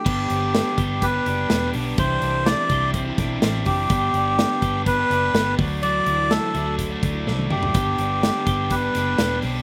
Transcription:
<<
  \new Staff \with { instrumentName = "Melodica" } { \time 4/4 \key g \major \tempo 4 = 125 g'2 b'4. r8 | c''4 d''4 r4. g'8~ | g'2 b'4. r8 | d''4 a'4 r4. g'8~ |
g'2 b'4. r8 | }
  \new Staff \with { instrumentName = "Clean electric guitar" } { \time 4/4 \key g \major <b g'>8 c'16 d'16 b8 g'8 b8 d'8 b8 d'8 | <e g'>8 d'8 c'8 g'8 c'8 d'8 c'8 d'8 | <b g'>8 d'8 b8 g'8 b8 d'8 b8 fis8 | <fis fis'>8 e'8 a8 e'16 fis'16 a8 d'16 e'16 a8 e'8 |
<b g'>8 d'8 b8 g'8 b8 d'8 b8 c'16 d'16 | }
  \new Staff \with { instrumentName = "Overdriven electric guitar" } { \time 4/4 \key g \major <g, d g b d' g'>4. <g b d' g'>8. <g b d' g'>16 <g b d' g'>8 <g b d' g'>8 <g b d' g'>8 | <c g d' e' g'>4. <g d' e' g'>8. <d' e' g'>16 <g d' e' g'>8 <g d' e' g'>8 <g d' e' g'>8 | <g, d g b d' g'>4. <g b d' g'>8. <g b d' g'>16 <g b d' g'>8 <g b d' g'>8 <a d' fis' d''>8 | <d e a d' fis' d''>4. <a d' fis' d''>8. <a d' fis' d''>16 <a d' fis' d''>8 <a d' fis' d''>8 <a d' fis' d''>8 |
<g, d g b d' g'>4. <g b d' g'>8. <g b d' g'>16 <g b d' g'>8 <g b d' g'>8 <g b d' g'>8 | }
  \new Staff \with { instrumentName = "Fingered electric bass" } { \clef bass \time 4/4 \key g \major g,,8 g,,8. r16 g,,4 fis,,8 e,,8 b,,8 | c,8 c,8. r16 c,4 b,,8 a,,8 fis,,8 | g,,8 g,,8. r16 g,,4 fis,,8 g,,8 d,8~ | d,8 d,8. r16 d,4 d,8 c,8 fis,,8 |
g,,8 g,,8. r16 g,,4 fis,,8 e,,8 b,,8 | }
  \new DrumStaff \with { instrumentName = "Drums" } \drummode { \time 4/4 <cymc bd>8 hh8 <hh sn>8 <hh bd>8 <hh bd>8 hh8 <hh sn>8 hho8 | <hh bd>8 hh8 <hh sn>8 <hh bd>8 <hh bd>8 <hh bd sn>8 <hh sn>8 <hho bd>8 | <hh bd>8 hh8 <hh sn>8 <hh bd>8 <hh bd>8 hh8 <hh sn>8 <hho bd>8 | hh8 hh8 <hh sn>8 hh8 <hh bd>8 <hh bd>8 sn16 tommh16 toml16 tomfh16 |
<hh bd>8 hh8 <hh sn>8 <hh bd>8 <hh bd>8 <hh sn>8 <hh sn>8 hho8 | }
>>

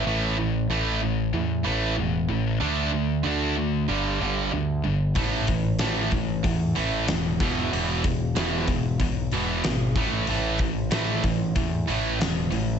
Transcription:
<<
  \new Staff \with { instrumentName = "Distorted electric guitar" } { \clef bass \time 4/4 \key e \phrygian \tempo 4 = 94 <a, e a>8 <a, e>8 <a, e a>8 <a, e>8 <a, e>8 <a, e a>8 <a, e>8 <a, e>8 | <d a d'>8 <d a>8 <d a d'>8 <d a>8 <g, d g>8 <g, d g>8 <g, d>8 <g, d>8 | <a, e a>8 <a, e>8 <a, e a>8 <a, e>8 <a, e>8 <a, e a>8 <a, e>8 <e, b, e>8 | <e, b, e>8 <e, b,>8 <e, b, e>8 <e, b,>8 <e, b,>8 <e, b, e>8 <e, b,>8 <a, e a>8 |
<a, e a>8 <a, e>8 <a, e a>8 <a, e>8 <a, e>8 <a, e a>8 <a, e>8 <a, e>8 | }
  \new Staff \with { instrumentName = "Overdriven electric guitar" } { \clef bass \time 4/4 \key e \phrygian <a, e a>8 <a, e>8 <a, e a>8 <a, e>8 <a, e>8 <a, e a>8 <a, e>8 <a, e>8 | <d a d'>8 <d a>8 <d a d'>8 <d a>8 <g, d g>8 <g, d g>8 <g, d>8 <g, d>8 | <a, e a>8 <a, e>8 <a, e a>8 <a, e>8 <a, e>8 <a, e a>8 <a, e>8 <e, b, e>8 | <e, b, e>8 <e, b,>8 <e, b, e>8 <e, b,>8 <e, b,>8 <e, b, e>8 <e, b,>8 <a, e a>8 |
<a, e a>8 <a, e>8 <a, e a>8 <a, e>8 <a, e>8 <a, e a>8 <a, e>8 <a, e>8 | }
  \new Staff \with { instrumentName = "Picked electric bass" } { \clef bass \time 4/4 \key e \phrygian a,,4 a,,4 e,8 a,,8 e,,8 a,,8 | d,4 d,4 g,,8 g,,8 d,8 g,,8 | a,,4 a,,4 e,8 a,,8 e,,8 e,,8 | e,,4 e,,4 b,,8 e,,8 gis,,8 a,,8 |
a,,4 a,,4 e,8 a,,8 e,,8 a,,8 | }
  \new DrumStaff \with { instrumentName = "Drums" } \drummode { \time 4/4 r4 r4 r4 r4 | r4 r4 r4 r4 | <hho bd>8 <hho bd>8 <hho sn>8 <hho bd>8 <hho bd>8 hho8 <hho sn>8 <hho bd>8 | hho8 <hho bd>8 <hho sn>8 <hho bd>8 <hho bd>8 hho8 <hho sn>8 <hho bd>8 |
hho8 <hho bd>8 <hho sn>8 <hho bd>8 <hho bd>8 hho8 <hho sn>8 hho8 | }
>>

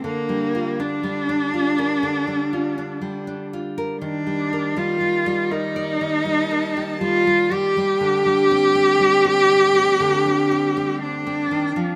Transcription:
<<
  \new Staff \with { instrumentName = "Cello" } { \time 4/4 \key g \minor \tempo 4 = 60 bes8. d'2~ d'8. r8 | d'8. f'8. ees'4. f'8 g'8~ | g'2. d'4 | }
  \new Staff \with { instrumentName = "String section" } { \time 4/4 \key g \minor << { r1 | g'2 a''2 | g'1 | } \\ { r1 | <ees g bes d''>1 | <d g a c'>1 | } >> }
  \new Staff \with { instrumentName = "Nylon-string guitar" } { \clef bass \time 4/4 \key g \minor << { r8 f'16 d'8 d'16 f'16 bes'8. f'16 d'8 d'16 f'16 bes'16 | r8 bes'16 g16 r16 g16 bes'16 d''8. bes'16 g'8 g16 g16 g16~ | g16 r16 c'16 c'8 c'16 c'16 c'8. c'16 c'8 c'8. | } \\ { d16 g8. g4 d16 g8. g4 | ees16 g8 r16 g16 r8. ees16 g8. g16 r8. | d16 g8. g4 d16 g8. r8 ees16 f16 | } >> }
>>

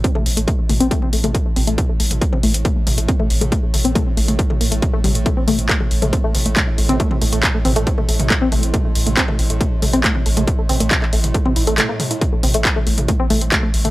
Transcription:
<<
  \new Staff \with { instrumentName = "Synth arpeggio sound" } { \time 4/4 \key a \minor \tempo 4 = 138 c'16 a16 r16 a16 a16 r16 a16 c'16 a16 r16 a16 a16 r16 a16 c'16 a16 | r16 a16 a16 r16 a16 c'16 a16 r16 a16 a16 r16 a16 c'16 a16 r16 a16 | a16 r16 a16 c'16 a16 r16 a16 a16 r16 a16 bes16 a16 r16 a16 g16 r16 | a16 c'16 a16 r16 a16 a16 r16 a16 c'16 a16 r16 a16 a16 r16 a16 c'16 |
a16 r16 a16 a16 r16 a16 c'16 a16 r16 a16 a16 r16 a16 c'16 a16 r16 | a16 a16 r16 a16 c'16 a16 r16 a16 a16 r16 a16 c'16 a16 r16 a16 a16 | r16 a16 c'16 a16 r16 a16 a16 r16 a16 c'16 e'16 a16 a16 bes16 r16 e'16 | r16 a16 c'16 a16 r16 a16 a16 r16 a16 c'16 a16 r16 a16 a16 r16 a16 | }
  \new Staff \with { instrumentName = "Synth drone" } { \clef bass \time 4/4 \key a \minor a,1~ | a,1~ | a,1~ | a,1~ |
a,1~ | a,1~ | a,1 | a,1 | }
  \new Staff \with { instrumentName = "Sub bass" } { \clef bass \time 4/4 \key a \minor r8 a,,16 a,,16 r8 a,,16 a,,16 r8 a,,16 a,,16 r8 a,,16 a,,16 | r8 a,,16 a,,16 r8 a,,16 a,,16 r8 a,,16 a,,16 r8 a,,16 a,,16 | r8 a,,16 a,,16 r8 a,,16 a,,16 r8 a,,16 a,,16 r8 a,,16 a,,16 | r8 a,,16 a,,16 r8 a,,16 a,,16 r8 a,,16 a,,16 r8 a,,16 a,,16 |
r8 a,,16 a,,16 r8 a,,16 a,,16 r8 a,,16 a,,16 r8 a,,16 a,,16 | r8 a,,16 a,,16 r8 a,,16 a,,16 r8 a,,16 a,,16 r8 a,,16 a,,16 | r8 a,,16 a,,16 r8 a,,16 a,,16 r8 a,,16 a,,16 r4 | r8 a,,16 a,,16 r8 a,,16 a,,16 r8 a,,16 a,,16 r8 a,,16 a,,16 | }
  \new DrumStaff \with { instrumentName = "Drums" } \drummode { \time 4/4 <hh bd>16 toml16 hho16 hh16 <hh bd toml>8 <hho toml>16 hh16 <hh bd>16 toml16 hho16 <hh toml>16 <hh bd>8 <hho toml>16 hh16 | <hh bd toml>8 hho16 <hh toml>16 <hh bd>16 toml16 hho16 hh16 <hh bd toml>8 <hho toml>16 hh16 <hh bd>16 toml16 hho16 <hh toml>16 | <hh bd>8 <hho toml>16 hh16 <hh bd toml>8 hho16 <hh toml>16 <hh bd>16 toml16 hho16 hh16 <hh bd toml>8 <hho toml>16 hh16 | <hh bd toml>8 <hho toml>16 hh16 <hc hh bd>16 toml16 hho16 <hh toml>16 <hh bd>8 <hho toml>16 hh16 <hc hh bd toml>8 hho16 <hh toml>16 |
<hh bd>16 toml16 hho16 hh16 <hc hh bd toml>8 <hho toml>16 hh16 <hh bd>16 toml16 hho16 <hh toml>16 <hc hh bd>8 <hho toml>16 hh16 | <hh bd toml>8 hho16 <hh toml>16 <hc hh bd>16 toml16 hho16 hh16 <hh bd toml>8 <hho toml>16 hh16 <hc hh bd>16 toml16 hho16 <hh toml>16 | <hh bd>8 <hho toml>16 hh16 <hc hh bd toml>16 hc16 hho16 <hh toml>16 <hh bd>16 toml16 hho16 hh16 <hc hh toml>8 <hho toml>16 hh16 | <hh bd toml>8 <hho toml>16 hh16 <hc hh bd>16 toml16 hho16 <hh toml>16 <hh bd>8 <hho toml>16 hh16 <hc hh bd toml>8 hho16 <hh toml>16 | }
>>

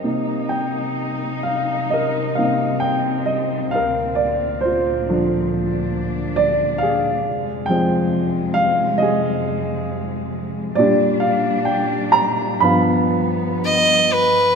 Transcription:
<<
  \new Staff \with { instrumentName = "Fiddle" } { \time 4/4 \key c \minor \tempo 4 = 67 r1 | r1 | r1 | r2. ees''8 b'8 | }
  \new Staff \with { instrumentName = "Upright piano" } { \time 4/4 \key c \minor << { ees''8 g''4 f''8 ees''8 f''8 g''8 ees''8 | f''8 d''8 c''2 d''8 f''8~ | f''8 g''4 f''8 ees''2 | d''8 f''8 g''8 bes''8 b''4. r8 | } \\ { bes'4. r8 bes'2 | bes'4 f'2 r8 aes'8~ | aes'4. r8 aes'2 | g'2 f''2 | } >> }
  \new Staff \with { instrumentName = "Upright piano" } { \clef bass \time 4/4 \key c \minor <c bes ees'>8 r2 <c bes ees'>8 r4 | r4. <d f d'>8 r2 | r8 <f aes c'>2.~ <f aes c'>8 | <bes, g d'>4. r8 <g, f b>2 | }
  \new Staff \with { instrumentName = "String section" } { \clef bass \time 4/4 \key c \minor << { <c ees'>1 | d,1 | <f, aes>1 | <bes, d'>2 <g, b>2 | } \\ { bes2 c'2 | bes,2 d'2 | c1 | g2 f2 | } >> }
>>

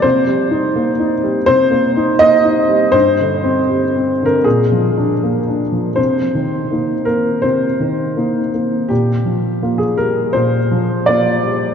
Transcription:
<<
  \new Staff \with { instrumentName = "Grand piano" } { \time 4/4 \key c \minor \tempo 4 = 82 c''2 c''4 ees''4 | c''4.~ c''16 bes'16 aes'4. r8 | c''4. bes'8 c''2 | g'4~ g'16 aes'16 bes'8 c''4 d''4 | }
  \new Staff \with { instrumentName = "Grand piano" } { \clef bass \time 4/4 \key c \minor \tuplet 3/2 { c8 g8 ees'8 bes8 ees'8 g8 c8 bes8 ees'8 bes8 ees'8 g8 } | \tuplet 3/2 { g,8 d8 c'8 g8 c'8 d8 bes,8 f8 d'8 bes8 d'8 f8 } | c8 ees8 <bes ees'>8 bes8 c8 ees8 <bes ees'>8 bes8 | bes,8 f8 <bes f'>8 g8 bes,8 f8 <bes f'>8 g8 | }
>>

